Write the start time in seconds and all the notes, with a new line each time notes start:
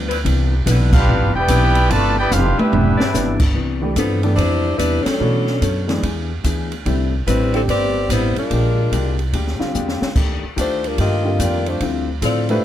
Already playing: D2 G2 F3 B3 D4
0.08 E3 C4 D4 B4, ride
0.24 C2 C3 E3 B3 D4, kick, ride
0.66 B1 C3 D3 E3 B3 D4 B4, kick, hi-hat pedal, ride
0.93 G3 B3 D4 F4 G4 B4 F5, kick, crash
1.07 A1 C3 E3 B3 D4
1.22 G1
1.35 E1 B3 E4 G4 B4 D5 G5
1.48 B1 C3 E3 B3 C4 D4 B4, kick, hi-hat pedal, ride
1.75 ride
1.90 G1 C3 E3 A3 B3 D4 F4 B4 D5 A5, kick, ride
2.19 B3 E4 G4 B4 D5 G5
2.31 F1 C3 E3 B3 D4 F4 G4 B4 F5, snare, hi-hat pedal
2.57 E3 G3 B3 C4 D4 E4 G4 B4 E5, muted upright bass stroke, high tom
2.72 E1 C3 E3 B3 D4, floor tom
2.98 C3 E3 D4 D5, snare
3.14 G1 C3 E3 B3 D4, snare, hi-hat pedal
3.40 kick, crash
3.54 C2 C3 E3 B3 D4, kick
3.81 E3 A3 D4 G4
3.96 G2 C3 E3 F3 B3 D4 A4, kick, hi-hat pedal, ride
4.23 E3 A3 B3 D4 G4 A4, ride
4.36 F2 C3 E3 G3 B3 D4 E4 C5, kick, ride
4.40 D4
4.77 E2 C3 E3 G3 B3 D4 E4 B4, kick, hi-hat pedal, ride
5.02 F#3 C#4 D4 A4, muted upright bass stroke, snare, ride
5.20 B2 E3 A3 B3 D4 F#4 A4 C#5
5.47 snare
5.61 F#2 B3 D4 A4 C#5, kick, hi-hat pedal, ride
5.87 E3 G#3 B3 D4, snare, ride
6.03 E2 E3 B3 D4 G#4, kick, ride
6.44 D2 E3 B3 D4 G#4, kick, hi-hat pedal, ride
6.72 ride
6.86 C2 A2 D3 G3 C4 D4 E4, kick, ride
7.27 A1 A2 G3 C4 D4 E4 B4, kick, hi-hat pedal, ride
7.54 D3 G3 C4 E4 G4 A4, ride
7.68 G1 A2 G3 C4 D4 G4 B4 D5, kick, ride
8.09 A1 A2 G3 B3 C4 D4 E4 C5, kick, hi-hat pedal, ride
8.36 G#3 D4 F4 A#4, muted upright bass stroke, ride
8.51 A#1 A#2 G#3 D4 G4, kick, ride
8.92 C2 A#2 G#3 D4 G4, kick, hi-hat pedal, ride
9.19 ride
9.33 D2 A#2 G#3 D4 G4, kick, ride
9.47 snare
9.59 D3 G3 C4 F4, muted upright bass stroke, snare
9.74 E2 A#2 G#3 D4 G4, hi-hat pedal
9.88 snare
10.01 muted upright bass stroke, snare
10.15 D#2 D#3 A3 D4 G4, kick, crash
10.43 muted upright bass stroke
10.56 D2 D#3 A3 D4 F4 G4 C5, kick, hi-hat pedal, ride
10.84 G3 D4 F4 A#4, ride
10.98 G2 D#3 A3 A#3 D4 F4 G4 D#5, kick, ride
11.24 D3 G3 C4 F4
11.39 F2 D#3 A3 A#3 D4 F4 G4 D5, kick, hi-hat pedal, ride
11.66 A3 D4 F4 C5, ride
11.80 D2 D3 F3 G3 C4 E4 F4, kick, ride
12.22 A2 D3 F3 C4 E4 F4 A4 D5, kick, hi-hat pedal, ride
12.49 A3 D4 E4 F4 G4 B4 C5, ride